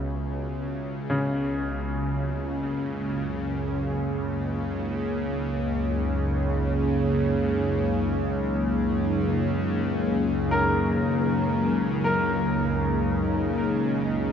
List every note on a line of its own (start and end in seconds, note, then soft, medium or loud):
0.00 14.32 C#2 medium
0.00 14.32 C#3 medium
0.00 1.21 B3 medium
0.00 4.17 C#4 medium
0.00 3.40 F#4 medium
0.00 1.20 E5 medium
1.10 7.20 C#3 medium
1.22 14.32 F#2 medium
1.51 14.32 A#3 medium
1.93 14.32 G#4 medium
3.58 12.19 C#5 medium
3.76 14.32 D#4 medium
10.51 12.03 A#4 medium
11.86 14.32 D#5 medium
12.04 14.32 A#4 medium